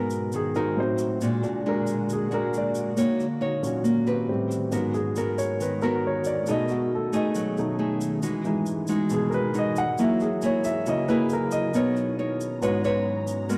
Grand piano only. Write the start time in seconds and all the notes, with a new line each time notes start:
Already playing: G#2 F#3 B3 A#4
0.36 G#4
0.56 A#4
0.77 A2 F#3 C4 C5
1.43 A#2 G#3 D4
1.69 A#4
2.13 G#4
2.34 A#4
2.58 D5
3.62 A#2 F#3 C#4
4.28 A2 G3 C4
4.71 G#2 F#3 B3
4.94 G#4
5.18 A#4
5.38 C#5
5.62 B4
5.82 A#4
6.07 C#5
6.26 D5
6.47 B2 A3 D#4 D#5
6.71 F#4
6.95 A4
7.15 D#5
7.58 B2 A3 D#4
8.45 E3 G#3 D#4
9.14 G#4
9.30 A#4
9.34 B4
9.59 D#5
9.78 F#5
9.99 F#3 A#3 E4 E5
10.22 G#4
10.46 C#5
10.64 E5
10.86 F#3 A#3 E4 D#5
11.08 B4
11.33 A#4
11.52 D#5
11.73 B2 D#4
12.61 G#2 F#3 B3